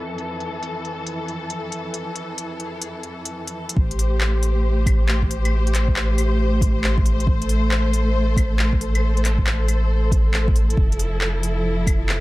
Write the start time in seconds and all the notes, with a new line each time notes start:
Already playing: F2 E3 A4
0.18 closed hi-hat
0.40 closed hi-hat
0.63 closed hi-hat
0.85 closed hi-hat
1.07 closed hi-hat
1.28 closed hi-hat
1.50 closed hi-hat
1.72 closed hi-hat
1.94 closed hi-hat
2.16 closed hi-hat
2.38 closed hi-hat
2.60 closed hi-hat
2.82 closed hi-hat
3.03 closed hi-hat
3.25 closed hi-hat
3.47 closed hi-hat
3.69 closed hi-hat
3.77 A1 A3 G4 C5, kick
3.91 closed hi-hat
3.99 open hi-hat
4.21 clap
4.43 open hi-hat
4.86 kick, open hi-hat, claves
5.09 clap
5.23 kick
5.31 open hi-hat
5.45 closed hi-hat, claves
5.67 closed hi-hat
5.75 clap, open hi-hat
5.88 kick
5.96 clap
6.18 open hi-hat, claves
6.61 kick, open hi-hat
6.84 clap
6.98 kick
7.06 open hi-hat
7.20 closed hi-hat
7.27 A4, kick
7.42 closed hi-hat
7.49 open hi-hat
7.71 clap
7.93 open hi-hat
8.37 kick, open hi-hat, claves
8.59 clap
8.73 kick
8.81 open hi-hat
8.95 closed hi-hat, claves
9.17 closed hi-hat
9.25 clap, open hi-hat
9.38 kick
9.47 clap
9.68 open hi-hat, claves
10.12 kick, open hi-hat
10.34 clap
10.48 kick
10.56 open hi-hat
10.70 closed hi-hat
10.77 F1 F3 E4, kick
10.92 closed hi-hat
10.99 open hi-hat
11.21 clap
11.43 open hi-hat
11.87 kick, open hi-hat, claves
12.09 clap